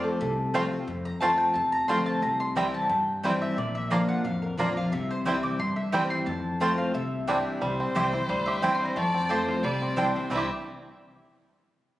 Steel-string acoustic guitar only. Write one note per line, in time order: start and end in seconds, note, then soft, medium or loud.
0.00 0.17 F2 medium
0.00 0.18 F3 medium
0.00 0.19 A3 medium
0.00 0.19 C4 medium
0.00 0.19 F4 medium
0.21 0.85 C3 medium
0.54 0.71 F3 medium
0.54 0.72 A3 medium
0.54 0.72 C4 medium
0.54 0.70 F4 loud
0.71 0.88 C4 medium
0.71 0.87 F4 medium
0.88 1.52 F2 medium
1.21 1.53 F3 medium
1.21 1.54 A3 medium
1.21 1.54 C4 medium
1.21 1.55 F4 medium
1.55 2.20 C3 medium
1.88 2.21 F3 medium
1.88 2.21 A3 medium
1.88 2.21 C4 medium
1.88 2.21 F4 loud
2.23 2.87 C3 medium
2.56 2.88 E3 medium
2.56 2.88 G3 medium
2.56 2.89 C4 medium
2.56 2.89 E4 medium
2.89 3.54 G2 medium
3.23 3.56 E3 medium
3.23 3.56 G3 medium
3.23 3.56 C4 medium
3.23 3.57 E4 loud
3.58 4.22 A#2 medium
3.91 4.23 F3 medium
3.91 4.24 A#3 medium
3.91 4.24 D4 medium
3.91 4.24 F4 medium
4.25 4.89 F2 medium
4.58 4.75 F3 medium
4.58 4.75 A#3 medium
4.58 4.76 D4 medium
4.58 4.75 F4 medium
4.76 4.92 D4 medium
4.76 4.91 F4 medium
4.93 5.57 C3 medium
5.25 5.58 E3 medium
5.25 5.58 G3 medium
5.25 5.58 C4 medium
5.25 5.59 E4 loud
5.59 6.24 G2 medium
5.93 6.25 E3 medium
5.93 6.26 G3 medium
5.93 6.26 C4 medium
5.93 6.26 E4 medium
6.27 6.91 F2 medium
6.60 6.92 F3 medium
6.60 6.93 A3 medium
6.60 6.93 C4 medium
6.60 6.93 F4 loud
6.95 7.59 C3 medium
7.27 7.60 E3 medium
7.27 7.60 G3 medium
7.27 7.60 D4 loud
7.27 7.61 E4 medium
7.62 8.26 C3 medium
7.95 8.12 E3 medium
7.95 8.13 G3 medium
7.95 8.13 C4 medium
7.95 8.12 E4 medium
8.13 8.29 C4 soft
8.13 8.28 E4 medium
8.29 8.93 G2 medium
8.62 8.95 E3 medium
8.62 8.95 G3 medium
8.62 8.95 C4 loud
8.62 8.96 E4 loud
8.96 9.60 F2 medium
9.29 9.62 F3 medium
9.29 9.62 A3 medium
9.29 9.62 C4 medium
9.29 9.62 F4 medium
9.64 10.28 C3 medium
9.96 10.14 E3 medium
9.96 10.14 G3 medium
9.96 10.15 D4 loud
9.96 10.13 E4 medium
10.14 10.30 D4 medium
10.14 10.30 E4 medium
10.30 10.45 C3 medium
10.30 10.45 E3 medium
10.30 10.45 G3 medium
10.30 10.45 D4 medium
10.30 10.46 E4 medium